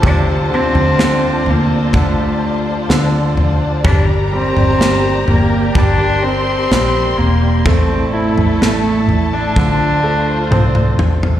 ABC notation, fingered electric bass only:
X:1
M:4/4
L:1/16
Q:1/4=63
K:Dm
V:1 name="Fingered electric bass" clef=bass
D,,3 D,,3 D,,6 D,,2 D,,2 | G,,,3 G,,,3 G,,,2 G,,,4 B,,,2 E,,,2 | A,,,3 A,,,3 A,,,2 D,,4 C,,2 A,,,2 |]